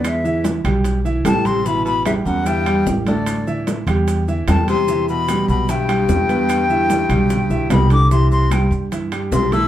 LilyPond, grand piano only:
\new Staff \with { instrumentName = "Grand piano" } { \time 4/4 \key e \minor \tempo 4 = 149 <b b' b''>8 <e e' e''>4 <g g' g''>4 <e e' e''>8 <g g' g''>4 | <e e' e''>4 <g g' g''>4 <e e' e''>8 <g g' g''>4 <a a' a''>8~ | <a a' a''>8 <e e' e''>4 <g g' g''>4 <e e' e''>8 <g g' g''>4 | <e e' e''>4 <g g' g''>4 <e e' e''>8 <g g' g''>4 <b b' b''>8~ |
<b b' b''>8 <e e' e''>4 <g g' g''>4 <e e' e''>8 <g g' g''>4 | <e e' e''>4 <g g' g''>4 <e e' e''>8 <g g' g''>4 <a a' a''>8 | }